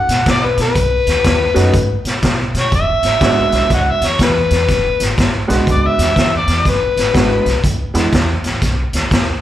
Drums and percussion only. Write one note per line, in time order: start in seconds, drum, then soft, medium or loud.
0.09 snare soft
0.09 closed hi-hat medium
0.26 kick medium
0.26 snare loud
0.26 closed hi-hat medium
0.58 snare soft
0.58 closed hi-hat medium
0.75 kick medium
0.75 closed hi-hat medium
1.07 snare soft
1.07 closed hi-hat medium
1.24 kick medium
1.24 snare loud
1.24 closed hi-hat medium
1.56 snare soft
1.56 closed hi-hat medium
1.73 kick medium
1.73 closed hi-hat medium
2.05 snare soft
2.05 closed hi-hat medium
2.23 kick medium
2.23 snare medium
2.23 closed hi-hat medium
2.55 snare soft
2.55 closed hi-hat soft
2.72 kick medium
2.72 closed hi-hat medium
3.03 snare soft
3.03 closed hi-hat medium
3.21 kick medium
3.21 snare loud
3.21 closed hi-hat medium
3.52 snare soft
3.52 closed hi-hat medium
3.70 kick medium
3.70 snare soft
3.70 closed hi-hat medium
4.02 snare soft
4.02 closed hi-hat medium
4.19 kick medium
4.19 snare loud
4.19 closed hi-hat medium
4.51 snare soft
4.51 closed hi-hat medium
4.68 kick medium
4.68 snare soft
4.68 closed hi-hat medium
5.00 snare soft
5.00 closed hi-hat medium
5.18 kick medium
5.18 snare loud
5.18 closed hi-hat medium
5.50 snare soft
5.50 closed hi-hat medium
5.67 kick medium
5.67 closed hi-hat medium
5.99 snare soft
5.99 closed hi-hat medium
6.16 kick medium
6.16 snare loud
6.16 closed hi-hat medium
6.48 snare soft
6.48 closed hi-hat medium
6.65 kick medium
6.65 snare soft
6.65 closed hi-hat medium
6.97 snare soft
6.97 closed hi-hat medium
7.15 kick medium
7.15 snare loud
7.15 closed hi-hat medium
7.46 snare soft
7.46 closed hi-hat medium
7.64 kick medium
7.64 closed hi-hat medium
7.95 snare soft
7.95 closed hi-hat medium
8.13 kick medium
8.13 snare medium
8.13 closed hi-hat medium
8.44 snare soft
8.44 closed hi-hat medium
8.62 kick medium
8.62 snare soft
8.62 closed hi-hat medium
8.93 snare soft
8.93 closed hi-hat medium
9.11 kick medium
9.11 snare loud
9.11 closed hi-hat medium